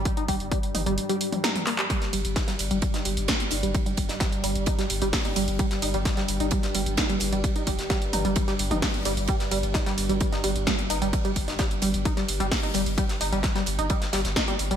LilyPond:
<<
  \new Staff \with { instrumentName = "Synth arpeggio sound" } { \clef bass \time 4/4 \key ees \lydian \tempo 4 = 130 r16 ees'16 g16 r16 g16 r16 ees'16 g16 r16 g16 r16 g16 ees'16 r16 bes16 g16 | g16 r16 g16 r16 ees'16 g16 r16 g16 r16 ees'16 g16 r16 g16 r16 ees'16 g16 | r16 g16 r16 ees'16 g16 r16 g16 r16 ees'16 g16 r16 g16 r16 ees'16 g16 r16 | g16 r16 ees'16 g16 r16 g16 r16 ees'16 g16 r16 g16 r16 ees'16 g16 r16 g16 |
r16 ees'16 g16 r16 g16 r16 ees'16 g16 r16 g16 r16 ees'16 g16 r16 g16 r16 | g16 r16 g16 r16 ees'16 g16 r16 g16 r16 ees'16 g16 r16 g16 r16 ees'16 g16 | r16 g16 r16 ees'16 g16 r16 g16 r16 ees'16 g16 r16 g16 r16 ees'16 g16 r16 | g16 r16 ees'16 g16 r16 g16 r16 ees'16 g16 r16 g16 r16 ees'16 g16 r16 g16 | }
  \new Staff \with { instrumentName = "Synth drone" } { \clef bass \time 4/4 \key ees \lydian <g, g>1 | <g, g>1~ | <g, g>1~ | <g, g>1~ |
<g, g>1~ | <g, g>1~ | <g, g>1~ | <g, g>1 | }
  \new Staff \with { instrumentName = "Sub bass" } { \clef bass \time 4/4 \key ees \lydian r8 g,,16 g,,16 r8 g,,16 g,,16 r2 | r8 g,,16 g,,16 r8 g,,16 g,,16 r8 g,,16 g,,16 r8 g,,16 g,,16 | r8 g,,16 g,,16 r8 g,,16 g,,16 r8 g,,16 g,,16 r8 g,,16 g,,16 | r8 g,,16 g,,16 r8 g,,16 g,,16 r8 g,,16 g,,16 r8 g,,16 g,,16 |
r8 g,,16 g,,16 r8 g,,16 g,,16 r8 g,,16 g,,16 r8 g,,16 g,,16 | r8 g,,16 g,,16 r8 g,,16 g,,16 r8 g,,16 g,,16 r8 g,,16 g,,16 | r8 g,,16 g,,16 r8 g,,16 g,,16 r8 g,,16 g,,16 r8 g,,16 g,,16 | r8 g,,16 g,,16 r8 g,,16 g,,16 r8 g,,16 g,,16 r8 g,,16 g,,16 | }
  \new DrumStaff \with { instrumentName = "Drums" } \drummode { \time 4/4 <hh bd>16 hh16 <hho bd>16 hh16 <hh bd>16 hh16 <hho toml>16 hh16 hh16 hh16 hho16 <hh toml>16 <hh sn>16 <hh toml>16 <hc hho>16 <hc hh>16 | <hh bd cymr>16 <hh sn>16 <hho cymr>16 hh16 <hh bd cymr sn>16 <hh sn>16 <hho cymr>16 hh16 <hh bd cymr>16 <hh sn>16 <hho cymr>16 hh16 <hh bd cymr sn>16 hh16 <hho cymr>16 hh16 | <hh bd cymr>16 hh16 <hho bd cymr>16 <hh sn>16 <hh bd cymr sn>16 hh16 <hho cymr>16 hh16 <hh bd cymr>16 <hh sn>16 <hho cymr>16 hh16 <hh hho bd sn>16 hh16 <hho cymr>16 hh16 | <hh bd cymr>16 <hh sn>16 <hho cymr>16 hh16 <hh bd cymr sn>16 <hh sn>16 <hho cymr>16 hh16 <hh bd cymr>16 <hh sn>16 <hho cymr>16 hh16 <hh bd cymr sn>16 hh16 <hho cymr>16 hh16 |
<hh bd cymr>16 hh16 <hho bd cymr>16 <hh sn>16 <hh bd cymr sn>16 hh16 <hho cymr toml>16 hh16 <hh bd cymr>16 <hh sn>16 <hho cymr>16 <hh toml>16 <hh hho bd sn>16 hh16 <hho cymr>16 hh16 | <hh bd cymr>16 <hh sn>16 <hho cymr>16 hh16 <hh bd cymr sn>16 <hh sn>16 <hho cymr>16 hh16 <hh bd cymr>16 <hh sn>16 <hho cymr>16 hh16 <hh bd cymr sn>16 hh16 <hho cymr>16 hh16 | <hh bd cymr>16 hh16 <hho bd cymr>16 <hh sn>16 <hh bd cymr sn>16 hh16 <hho cymr>16 hh16 <hh bd cymr>16 <hh sn>16 <hho cymr>16 hh16 <hh hho bd sn>16 hh16 <hho cymr>16 hh16 | <hh bd cymr>16 <hh sn>16 <hho cymr>16 hh16 <hh bd cymr sn>16 <hh sn>16 <hho cymr>16 hh16 <hh bd cymr>16 <hh sn>16 <hho cymr sn>16 <hh sn>16 <hh bd cymr sn>16 hh16 hho16 hh16 | }
>>